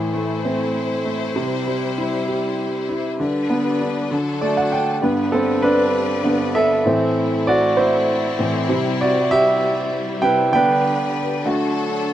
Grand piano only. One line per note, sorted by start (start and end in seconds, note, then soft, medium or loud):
0.00 1.32 A2 medium
0.00 1.02 E3 soft
0.14 1.04 A3 soft
0.45 1.34 C4 medium
1.05 1.35 A3 medium
1.36 3.15 C3 medium
1.68 2.86 G3 soft
1.98 2.88 E4 medium
2.28 3.17 G4 soft
2.89 3.19 E4 soft
3.20 4.09 D3 medium
3.50 4.09 B3 medium
3.81 4.11 D4 soft
4.11 5.00 D3 medium
4.41 5.01 A3 medium
4.41 4.56 D5 medium
4.57 4.71 F#5 medium
4.72 5.02 D4 medium
4.72 5.01 G5 medium
5.02 5.90 G2 soft
5.02 5.90 D3 soft
5.02 5.91 B3 medium
5.32 5.62 C4 medium
5.32 5.61 A4 medium
5.62 6.52 D4 medium
5.62 6.58 B4 medium
6.24 6.52 G2 soft
6.24 6.52 D3 soft
6.24 6.53 B3 medium
6.55 7.44 A4 medium
6.55 7.50 E5 loud
6.86 7.74 A2 medium
6.86 7.74 E3 soft
6.86 7.74 C4 medium
7.47 7.56 F#4 medium
7.47 7.54 D5 medium
7.77 8.43 E4 medium
7.77 8.42 C5 medium
8.39 8.66 A2 soft
8.39 8.67 E3 soft
8.39 8.67 C4 soft
8.69 9.10 C3 medium
8.69 9.10 G3 soft
8.69 9.11 E4 medium
9.01 9.08 F#4 medium
9.01 9.08 D5 medium
9.31 10.20 G4 medium
9.31 10.26 E5 loud
10.22 10.50 C3 soft
10.22 10.50 G3 soft
10.22 10.51 E4 soft
10.22 10.52 B4 medium
10.22 10.51 G5 loud
10.53 11.41 D3 medium
10.53 11.42 B3 soft
10.53 11.42 D4 medium
10.53 11.19 B4 medium
10.53 11.18 G5 loud
11.45 11.86 D3 medium
11.45 11.86 A3 soft
11.45 11.86 F#4 medium